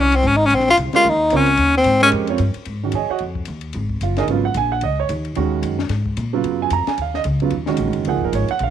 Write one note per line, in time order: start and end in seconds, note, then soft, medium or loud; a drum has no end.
0.00 0.22 C2 loud
0.00 0.17 C#4 medium
0.12 0.29 C4 medium
0.12 ride medium
0.22 0.50 G#1 loud
0.22 hi-hat pedal medium
0.27 0.38 C#4 medium
0.37 0.47 D#4 loud
0.46 0.56 C#4 medium
0.50 0.77 A#1 medium
0.50 ride medium
0.55 0.69 C4 medium
0.60 snare soft
0.69 0.76 F4 loud
0.69 snare soft
0.77 0.92 C2 medium
0.77 hi-hat pedal medium
0.77 ride medium
0.93 1.04 G#3 medium
0.93 1.04 C#4 medium
0.93 1.11 F4 loud
0.93 1.04 G4 medium
0.93 1.04 A#4 medium
0.93 muted upright bass stroke soft
0.93 snare soft
0.93 ride soft
1.04 1.31 D#2 medium
1.04 ride medium
1.09 1.38 D#4 medium
1.30 1.58 C#2 medium
1.30 1.46 C4 medium
1.30 1.46 F4 medium
1.30 1.47 A#4 medium
1.30 1.47 C#5 medium
1.30 hi-hat pedal medium
1.30 ride medium
1.36 1.77 C#4 loud
1.46 ride soft
1.57 1.85 D#2 medium
1.57 ride medium
1.77 2.01 C4 loud
1.84 2.11 G#2 loud
1.84 hi-hat pedal medium
1.84 ride medium
2.02 2.27 G#3 medium
2.02 2.27 C#4 medium
2.02 2.09 C#4 loud
2.02 2.28 G4 medium
2.02 2.28 A#4 medium
2.12 2.38 F2 medium
2.12 ride medium
2.27 2.39 C4 medium
2.27 2.39 F4 medium
2.27 2.39 A#4 medium
2.27 2.39 C#5 medium
2.27 ride medium
2.38 2.54 G2 medium
2.38 hi-hat pedal medium
2.38 ride medium
2.54 muted upright bass stroke soft
2.54 ride medium
2.65 2.93 G#2 medium
2.65 ride medium
2.83 2.93 D#3 medium
2.83 2.93 G#3 soft
2.83 2.93 C#4 soft
2.83 2.94 F#4 medium
2.92 3.08 F#2 medium
2.92 3.10 G#4 medium
2.92 3.09 C#5 medium
2.92 3.09 D#5 medium
2.92 3.10 G#5 medium
2.92 hi-hat pedal soft
2.92 ride medium
3.10 3.21 F#4 medium
3.10 3.20 C#5 medium
3.10 3.21 D#5 medium
3.10 3.21 F#5 medium
3.10 muted upright bass stroke soft
3.19 3.47 F2 medium
3.19 ride medium
3.35 kick medium
3.45 3.74 D#2 medium
3.45 hi-hat pedal medium
3.45 ride medium
3.61 ride soft
3.73 4.01 G#1 medium
3.73 ride medium
3.89 kick medium
4.01 4.27 F#1 medium
4.01 4.18 F4 medium
4.01 4.18 F5 medium
4.01 hi-hat pedal medium
4.01 ride medium
4.17 4.25 D#4 medium
4.17 4.25 G#4 medium
4.17 4.25 A#4 medium
4.17 4.24 D#5 medium
4.17 snare soft
4.17 ride soft
4.27 4.54 G#1 medium
4.27 4.43 C#3 medium
4.27 4.44 F#3 medium
4.27 4.44 B3 medium
4.27 4.44 F4 medium
4.27 ride medium
4.45 4.55 F#5 medium
4.54 4.81 A#1 medium
4.54 4.72 G#5 loud
4.54 hi-hat pedal medium
4.54 ride medium
4.72 4.82 F#5 medium
4.81 5.09 C#2 medium
4.81 4.98 D#5 medium
4.81 ride medium
5.00 5.10 C#5 medium
5.09 5.35 D#2 medium
5.09 hi-hat pedal soft
5.09 ride medium
5.25 ride soft
5.35 5.62 D#2 medium
5.35 5.76 D#3 medium
5.35 5.76 G#3 medium
5.35 5.76 C#4 medium
5.35 5.76 F#4 medium
5.35 ride medium
5.62 5.89 F#2 medium
5.62 hi-hat pedal medium
5.62 ride medium
5.79 snare medium
5.89 6.16 G#2 medium
5.89 snare soft
5.89 ride medium
6.06 kick medium
6.17 6.43 A#2 medium
6.17 hi-hat pedal medium
6.17 ride medium
6.33 6.69 C#3 medium
6.33 6.69 F#3 medium
6.33 6.69 B3 medium
6.33 6.70 F4 medium
6.44 6.70 F#2 medium
6.44 ride medium
6.62 6.72 G#5 medium
6.70 6.86 F2 medium
6.70 6.88 A#5 medium
6.70 hi-hat pedal medium
6.70 ride medium
6.87 6.98 G#5 medium
6.87 muted upright bass stroke soft
6.87 snare medium
6.87 ride soft
6.98 7.24 D#2 medium
6.98 ride medium
7.02 7.16 F5 medium
7.14 7.21 D#5 medium
7.14 snare soft
7.24 7.51 C#2 medium
7.24 hi-hat pedal medium
7.24 ride medium
7.40 7.51 C#3 medium
7.40 7.52 F#3 medium
7.40 7.52 B3 medium
7.40 7.52 F4 medium
7.40 kick soft
7.40 ride soft
7.50 7.78 D#2 medium
7.50 ride medium
7.66 8.04 D#3 medium
7.66 8.04 G#3 medium
7.66 8.04 C#4 medium
7.66 8.04 F#4 medium
7.66 snare soft
7.77 7.87 A#1 medium
7.77 hi-hat pedal medium
7.77 ride medium
7.87 7.96 G#1 medium
7.93 8.05 F#1 medium
7.93 ride soft
8.05 8.17 C#2 medium
8.05 8.46 F3 medium
8.05 8.46 A#3 medium
8.05 8.47 D#4 medium
8.05 8.47 G#4 medium
8.05 ride medium
8.09 8.23 F#5 medium
8.16 8.23 G#1 soft
8.21 8.32 F#1 medium
8.21 8.34 A#4 medium
8.21 kick soft
8.32 8.48 G#1 medium
8.32 8.50 C#5 medium
8.32 hi-hat pedal medium
8.32 ride medium
8.48 8.61 F#5 loud
8.48 muted upright bass stroke soft
8.48 ride soft
8.59 8.70 A#1 medium
8.59 ride medium
8.63 8.70 F5 medium